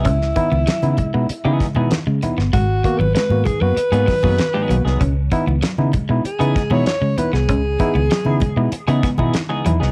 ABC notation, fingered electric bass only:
X:1
M:4/4
L:1/16
Q:1/4=97
K:C#dor
V:1 name="Fingered electric bass" clef=bass
C,,2 z C,, z C, z B,, z C, z B,, z C, z =G,,, | G,,,2 z G,,, z G,, z F,, z G,, z F,, z2 B,,, ^B,,, | C,,2 z C,, z C, z B,, z C, z B,, z C, z ^B,,, | C,,2 z C,, z C, z B,, z C, z B,, z2 E,, ^B,,, |]